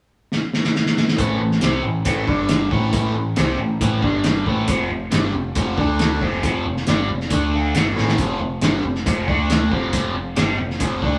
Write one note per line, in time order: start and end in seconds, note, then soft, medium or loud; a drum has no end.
0.32 snare medium
0.53 snare medium
0.64 snare medium
0.75 snare medium
0.86 snare medium
0.97 snare medium
1.08 snare medium
1.16 1.39 A1 medium
1.16 1.39 A2 medium
1.16 1.39 E3 loud
1.16 1.40 A3 loud
1.16 1.52 E4 loud
1.16 1.53 A4 loud
1.16 1.53 C5 loud
1.16 kick loud
1.16 closed hi-hat medium
1.40 1.61 A1 medium
1.40 1.58 A2 medium
1.40 1.58 E3 medium
1.51 snare soft
1.60 1.83 C2 medium
1.60 1.84 C3 medium
1.60 1.84 G3 medium
1.60 1.84 C4 loud
1.60 1.96 E4 medium
1.60 1.97 A4 medium
1.60 1.97 C5 medium
1.60 snare loud
1.60 closed hi-hat medium
1.83 2.04 A1 medium
1.83 2.02 A2 medium
1.83 2.02 E3 medium
2.04 2.26 A1 medium
2.04 2.27 A2 medium
2.04 2.27 E3 medium
2.04 2.28 A3 medium
2.04 2.22 E4 medium
2.04 2.23 A4 medium
2.04 2.23 C5 medium
2.04 kick loud
2.04 closed hi-hat medium
2.27 2.68 G1 medium
2.27 2.71 G2 medium
2.27 2.70 D3 medium
2.27 2.71 G3 medium
2.27 2.63 D4 medium
2.27 2.63 G4 medium
2.27 2.63 D5 medium
2.27 kick medium
2.49 snare loud
2.49 closed hi-hat medium
2.70 2.92 A1 medium
2.70 2.92 A2 medium
2.70 2.93 E3 medium
2.70 2.93 A3 loud
2.70 3.23 E4 medium
2.70 3.24 A4 medium
2.70 3.24 C5 medium
2.70 kick loud
2.93 3.13 A1 medium
2.93 3.15 A2 medium
2.93 3.15 E3 loud
2.93 3.15 A3 loud
2.93 kick loud
2.93 closed hi-hat medium
3.14 3.35 A1 medium
3.14 3.33 A2 medium
3.14 3.33 E3 medium
3.36 3.57 C2 medium
3.36 3.59 C3 medium
3.36 3.59 G3 loud
3.36 3.59 C4 medium
3.36 3.72 E4 medium
3.36 3.73 A4 medium
3.36 3.73 C5 medium
3.36 snare loud
3.36 closed hi-hat medium
3.58 3.79 A1 medium
3.58 3.77 A2 medium
3.58 3.77 E3 medium
3.80 4.01 A1 medium
3.80 4.02 A2 medium
3.80 4.03 E3 medium
3.80 4.03 A3 medium
3.80 3.98 E4 medium
3.80 3.99 A4 medium
3.80 3.99 C5 medium
3.80 kick loud
3.80 closed hi-hat medium
4.01 4.43 G1 medium
4.01 4.46 G2 medium
4.01 4.45 D3 medium
4.01 4.46 G3 loud
4.01 4.37 D4 medium
4.01 4.38 G4 medium
4.01 4.38 D5 medium
4.01 kick loud
4.24 snare loud
4.24 closed hi-hat medium
4.45 4.67 A1 medium
4.45 4.67 A2 medium
4.45 4.68 E3 medium
4.45 4.68 A3 medium
4.45 4.64 E4 medium
4.45 4.64 A4 medium
4.45 4.65 C5 medium
4.45 kick medium
4.68 4.89 F1 medium
4.68 4.89 F2 loud
4.68 4.89 C3 loud
4.68 4.90 F3 loud
4.68 5.03 C4 loud
4.68 5.04 F4 medium
4.68 5.04 C5 loud
4.68 kick loud
4.68 closed hi-hat medium
4.90 5.11 F1 medium
4.90 5.08 F2 medium
4.90 5.08 C3 medium
5.11 5.32 G1 medium
5.11 5.33 G2 medium
5.11 5.34 D3 medium
5.11 5.34 G3 loud
5.11 5.47 C4 medium
5.11 5.47 F4 medium
5.11 5.48 C5 medium
5.11 snare loud
5.11 closed hi-hat medium
5.34 5.54 F1 medium
5.34 5.52 F2 medium
5.34 5.52 C3 medium
5.55 5.76 F1 medium
5.55 5.77 F2 medium
5.55 5.77 C3 medium
5.55 5.78 F3 loud
5.55 5.73 C4 medium
5.55 5.73 F4 medium
5.55 5.74 C5 medium
5.55 kick loud
5.55 closed hi-hat medium
5.77 6.19 D2 medium
5.77 6.21 D3 medium
5.77 6.22 A3 loud
5.77 6.12 D4 medium
5.77 6.22 D4 loud
5.77 6.13 A4 medium
5.77 6.13 D5 medium
5.77 kick loud
5.99 snare loud
5.99 closed hi-hat medium
6.21 6.42 F1 medium
6.21 6.43 F2 medium
6.21 6.43 C3 loud
6.21 6.44 F3 loud
6.21 6.74 C4 medium
6.21 6.74 F4 medium
6.21 6.74 C5 medium
6.21 kick loud
6.43 6.64 F1 medium
6.43 6.65 F2 loud
6.43 6.65 C3 loud
6.43 6.66 F3 loud
6.43 kick loud
6.43 closed hi-hat medium
6.66 6.86 F1 medium
6.66 6.83 F2 medium
6.66 6.83 C3 medium
6.77 snare soft
6.87 7.08 G1 medium
6.87 7.09 G2 medium
6.87 7.09 D3 medium
6.87 7.09 G3 loud
6.87 7.22 C4 medium
6.87 7.22 F4 medium
6.87 7.22 D5 medium
6.87 snare loud
6.87 closed hi-hat medium
7.09 7.29 F1 medium
7.09 7.27 F2 medium
7.09 7.27 C3 medium
7.20 snare soft
7.30 7.72 D2 medium
7.30 7.74 D3 medium
7.30 7.74 A3 medium
7.30 7.48 D4 medium
7.30 7.75 D4 medium
7.30 7.48 A4 medium
7.30 7.49 D5 medium
7.30 kick loud
7.30 closed hi-hat medium
7.53 7.70 D4 medium
7.53 7.71 A4 medium
7.53 7.71 F5 medium
7.53 7.73 A5 medium
7.74 7.95 G1 medium
7.74 7.96 G2 medium
7.74 7.96 D3 medium
7.74 7.96 G3 loud
7.74 8.10 C4 medium
7.74 8.10 F4 medium
7.74 8.10 C5 medium
7.74 snare loud
7.74 closed hi-hat medium
7.96 8.17 A1 medium
7.96 8.17 A2 medium
7.96 8.18 E3 medium
7.96 8.18 A3 medium
7.96 8.17 E5 medium
7.96 snare medium
8.08 snare medium
8.18 8.39 F1 medium
8.18 8.39 F2 medium
8.18 8.40 C3 medium
8.18 8.40 F3 loud
8.18 8.53 C4 loud
8.18 8.54 F4 medium
8.18 8.54 A4 loud
8.18 kick loud
8.18 closed hi-hat medium
8.39 8.60 F1 medium
8.39 8.58 F2 medium
8.39 8.58 C3 medium
8.61 8.82 G1 medium
8.61 8.83 G2 medium
8.61 8.84 D3 medium
8.61 8.84 G3 medium
8.61 8.97 C4 medium
8.61 8.97 F4 medium
8.61 8.97 A4 medium
8.61 snare loud
8.61 closed hi-hat medium
8.84 9.04 F1 medium
8.84 9.02 F2 medium
8.84 9.02 C3 medium
8.95 snare soft
9.05 9.26 F1 medium
9.05 9.27 F2 medium
9.05 9.27 C3 medium
9.05 9.27 F3 medium
9.05 9.23 C4 medium
9.05 9.23 F4 medium
9.05 9.23 C5 medium
9.05 kick loud
9.05 closed hi-hat medium
9.26 9.68 D2 medium
9.26 9.71 D3 medium
9.26 9.71 A3 loud
9.26 9.62 D4 medium
9.26 9.71 D4 medium
9.26 9.62 A4 medium
9.26 9.63 D5 medium
9.26 kick medium
9.50 snare loud
9.50 closed hi-hat medium
9.71 9.92 F1 medium
9.71 9.92 F2 medium
9.71 9.93 C3 medium
9.71 9.93 F3 medium
9.71 10.23 C4 medium
9.71 10.24 F4 medium
9.71 10.24 C5 medium
9.71 kick loud
9.93 10.13 F1 medium
9.93 10.14 F2 loud
9.93 10.15 C3 loud
9.93 10.15 F3 loud
9.93 kick loud
9.93 closed hi-hat medium
10.14 10.35 F1 medium
10.14 10.33 F2 medium
10.14 10.33 C3 medium
10.36 10.57 G1 medium
10.36 10.58 G2 medium
10.36 10.58 D3 medium
10.36 10.59 G3 loud
10.36 10.72 C4 medium
10.36 10.72 F4 medium
10.36 10.72 C5 medium
10.36 snare loud
10.36 closed hi-hat medium
10.58 10.79 F1 medium
10.58 10.76 F2 medium
10.58 10.77 C3 medium
10.70 snare soft
10.80 11.01 F1 loud
10.80 11.02 F2 medium
10.80 11.02 C3 medium
10.80 11.02 F3 loud
10.80 10.98 C4 medium
10.80 10.99 F4 medium
10.80 10.99 C5 medium
10.80 kick loud
10.80 closed hi-hat medium
11.02 11.19 D2 medium
11.02 11.19 D3 medium
11.02 11.19 A3 loud
11.02 11.19 D4 medium
11.02 11.19 A4 medium
11.02 11.19 D5 loud
11.02 kick medium